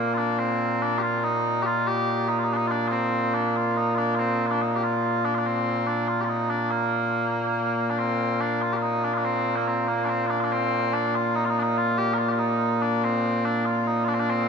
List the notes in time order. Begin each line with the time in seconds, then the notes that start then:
Already playing: A#2 A#3
0.14 D4 F4
0.39 C4
0.82 D4
0.98 F4 G4
1.24 D#4
1.62 F4 G4
1.87 G4
2.28 D#4
2.38 F4
2.44 D#4
2.53 D4 D#4
2.67 D4 F4
2.88 C4 F4
3.34 D4
3.56 F4
3.77 D#4
3.94 D4 F4
4.15 C4 F4
4.46 F4
4.51 D4
4.62 D#4
4.76 G4
4.83 F4
5.25 D4
5.34 D4 F4
5.46 C4
5.87 D4
6.08 F4
6.21 F4 G4
6.29 D#4
6.50 D4
6.71 A#3
7.90 D4
7.98 C4
8.40 D4
8.61 F4
8.73 F4 G4
8.82 D#4
9.04 D4
9.14 D4 F4
9.25 C4
9.56 A#3
9.68 C4
9.88 A#3
10.05 C4 D4
10.27 D4 F4
10.40 D4 F4
10.52 C4
10.93 D4
11.15 F4
11.35 D#4
11.45 F4
11.50 D#4
11.59 D4 D#4
11.77 F4
11.98 G4
12.14 A#4
12.18 F4
12.28 F4 G4
12.39 D#4
12.82 D4
13.04 C4
13.45 D4
13.65 F4
13.87 D#4
14.04 D4 F4
14.14 C4
14.19 D4
14.30 C4